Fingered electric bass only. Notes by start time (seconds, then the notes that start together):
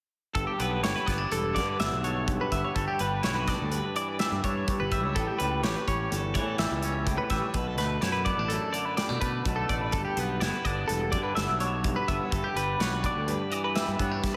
0.35 G1
0.60 B1
0.84 G1
1.07 G1
1.32 E1
1.56 G2
1.80 G1
1.92 B1
2.52 G1
2.76 G1
3.00 G1
3.24 B1
3.62 D2
4.31 G2
4.44 G2
4.80 G1
5.04 C#2
5.16 A1
5.41 C#2
5.65 A1
5.88 A1
6.12 G1
6.35 A2
6.59 A1
6.71 C#2
7.31 A1
7.55 B1
7.78 D2
8.02 F#2
8.37 A1
9.10 B2
9.22 B2
9.46 B1
9.70 A1
9.93 G1
10.17 B1
10.41 G1
10.66 G1
10.90 E1
11.13 G2
11.36 G1
11.49 B1
12.09 G1
12.32 G1
12.55 G1
12.79 B1
13.15 D2
13.88 G2
13.99 G2